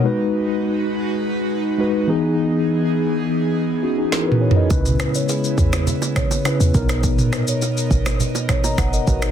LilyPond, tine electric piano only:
\new Staff \with { instrumentName = "Tine electric piano" } { \time 4/4 \key b \major \tempo 4 = 103 << { r1 | r2 r8 <cis' fis'>16 <dis' gis'>16 <e' ais'>16 <fis' b'>16 <gis' cis''>16 <ais' dis''>16~ | <ais' dis''>16 r2. r8. | r2 r8. <dis'' ais''>16 fis''16 <ais' dis''>16 <fis' b'>16 <dis' ais'>16 | } \\ { <gis dis' fis' b'>4. r4. <gis dis' fis' b'>8 <e b dis' gis'>8~ | <e b dis' gis'>4 r2. | <cis cis' dis' e' b'>4. r4. <cis cis' e' b'>8 <b, b dis' ais'>8~ | <b, b dis' ais'>4 r2. | } >> }